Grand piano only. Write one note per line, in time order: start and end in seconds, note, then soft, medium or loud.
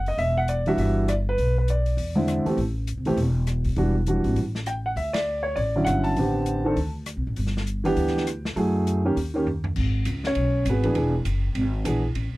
0.08 0.19 D#5 medium
0.18 0.37 E5 loud
0.38 0.49 F#5 medium
0.49 0.65 D5 medium
0.67 1.06 E3 medium
0.67 1.06 G3 medium
0.67 1.07 D4 medium
0.67 1.07 F#4 medium
0.67 0.78 E5 medium
0.79 1.10 E5 medium
1.09 1.14 D5 medium
1.29 1.56 B4 loud
1.58 1.69 B4 medium
1.70 2.43 D5 medium
2.15 2.44 D3 medium
2.15 2.44 G#3 medium
2.15 2.44 C4 medium
2.15 2.45 E4 medium
2.45 2.57 E3 medium
2.45 2.57 A3 medium
2.45 2.57 C4 medium
2.45 2.58 G4 medium
3.06 3.17 E3 medium
3.06 3.17 A3 medium
3.06 3.17 C4 medium
3.06 3.18 G4 medium
3.76 3.94 E3 medium
3.76 3.94 G3 medium
3.76 3.94 D4 medium
3.76 3.94 F#4 medium
4.07 4.37 E3 medium
4.07 4.38 G3 medium
4.07 4.38 D4 medium
4.07 4.38 F#4 medium
4.67 4.72 G5 medium
4.86 4.91 F#5 medium
4.97 5.14 E5 medium
5.13 5.42 D5 medium
5.43 5.57 C#5 medium
5.56 5.84 D5 medium
5.76 6.15 D3 medium
5.76 6.15 F#3 medium
5.76 6.15 C#4 medium
5.76 6.16 E4 medium
5.84 5.87 F5 medium
5.84 6.03 F#5 medium
6.04 6.90 A5 medium
6.17 6.61 D3 medium
6.17 6.62 B3 medium
6.17 6.62 C4 medium
6.17 6.63 G4 medium
6.64 6.76 D#3 medium
6.64 6.76 C4 medium
6.64 6.76 D4 medium
6.64 6.77 A4 medium
7.84 8.24 E3 medium
7.84 8.24 B3 medium
7.84 8.25 D4 medium
7.84 8.25 G4 loud
8.56 9.01 F#3 medium
8.56 9.01 A3 medium
8.56 9.01 E4 medium
8.56 9.02 G#4 medium
9.05 9.15 D#3 medium
9.05 9.16 A#3 medium
9.05 9.16 C#4 medium
9.05 9.16 G4 medium
9.34 9.45 D#3 medium
9.34 9.46 A#3 medium
9.34 9.46 C#4 medium
9.34 9.46 G4 medium
10.27 10.65 C#4 medium
10.27 10.64 C#5 medium
10.70 10.82 B3 medium
10.70 10.96 F#4 medium
10.70 10.84 G#4 medium
10.70 10.96 B4 medium
10.84 10.93 E3 medium
10.84 10.94 B3 medium
10.84 10.94 D4 medium
10.84 10.95 G#4 medium
10.95 11.12 E3 medium
10.95 11.12 B3 medium
10.95 11.12 D4 medium
10.95 11.13 G#4 medium
11.85 12.01 E3 medium
11.85 12.02 B3 medium
11.85 12.02 D4 medium
11.85 12.02 G#4 medium